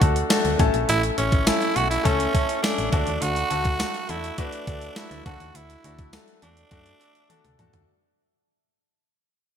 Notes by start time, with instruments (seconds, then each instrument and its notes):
Already playing: grand piano D3
0.00 fm bass D2, grand piano A3 D4 F#4 A4, kick, closed hi-hat
0.16 closed hi-hat
0.29 grand piano A3 D4 F#4 A4, snare, closed hi-hat, tambourine
0.45 fm bass D2, closed hi-hat
0.59 fm bass A1, grand piano A2 A3 C#4 E4 A4, kick, closed hi-hat
0.74 fm bass A#1, closed hi-hat
0.89 fm bass A1, tenor saxophone E4, closed hi-hat
1.03 closed hi-hat
1.17 fm bass A1, grand piano A3 C#4 E4 A4, tenor saxophone C#4, closed hi-hat
1.32 kick, closed hi-hat
1.46 grand piano A3 C#4 E4 A4, tenor saxophone E4, snare, closed hi-hat, tambourine
1.62 closed hi-hat
1.75 fm bass B1, grand piano A3 C#4 E4 A4, tenor saxophone F#4, closed hi-hat
1.91 tenor saxophone E4, closed hi-hat
2.04 fm bass C#2, grand piano A3 C#4 E4 A4, tenor saxophone C#4, kick, closed hi-hat
2.20 closed hi-hat
2.33 grand piano A3 C#4 E4 A4, kick, closed hi-hat
2.49 closed hi-hat
2.62 grand piano A3 C#4 E4 A4, tenor saxophone D4, snare, closed hi-hat, tambourine
2.78 fm bass A1, closed hi-hat
2.92 fm bass D2, grand piano D3 A3 D4 F#4 A4, tenor saxophone D4, kick, closed hi-hat
3.07 fm bass D#2, closed hi-hat
3.22 fm bass D2, tenor saxophone F#4, closed hi-hat
3.36 closed hi-hat
3.50 fm bass D2, grand piano A3 D4 F#4 A4, closed hi-hat
3.65 kick, closed hi-hat
3.79 grand piano A3 D4 F#4 A4, snare, closed hi-hat, tambourine
3.94 closed hi-hat
4.09 fm bass E2, grand piano A3 D4 F#4 A4, tenor saxophone E4, closed hi-hat
4.24 closed hi-hat
4.38 grand piano A3 D4 F#4 B4, tenor saxophone D4, kick, closed hi-hat
4.52 closed hi-hat
4.67 fm bass D2, grand piano A3 D4 F#4 A4, kick, closed hi-hat
4.82 closed hi-hat
4.96 grand piano A3 D4 F#4 A4, tenor saxophone E4, snare, closed hi-hat, tambourine
5.11 fm bass D2, closed hi-hat
5.26 fm bass D2, grand piano D3 A3 D4 F#4 A4, tenor saxophone F#4, kick, closed hi-hat
5.40 fm bass D#2, closed hi-hat
5.55 fm bass D2, tenor saxophone E4, closed hi-hat
5.70 closed hi-hat
5.84 fm bass D2, grand piano A3 D4 F#4 A4, closed hi-hat
5.99 kick, closed hi-hat
6.12 grand piano A3 D4 F#4 A4, snare, closed hi-hat, tambourine
6.28 closed hi-hat
6.42 fm bass E2, grand piano A3 D4 F#4 A4, tenor saxophone D4, closed hi-hat
6.57 closed hi-hat
6.70 fm bass F#2, grand piano A3 D4 F#4 A4, kick, closed hi-hat
6.86 closed hi-hat
7.00 grand piano A3 D4 F#4 A4, closed hi-hat
7.15 closed hi-hat
7.29 grand piano A3 D4 F#4 A4, closed hi-hat, high tom
7.44 fm bass D2, closed hi-hat, mid tom
7.58 fm bass E2, grand piano A3 D4 F#4 A4, closed hi-hat, mid tom
7.73 fm bass D#2, closed hi-hat, floor tom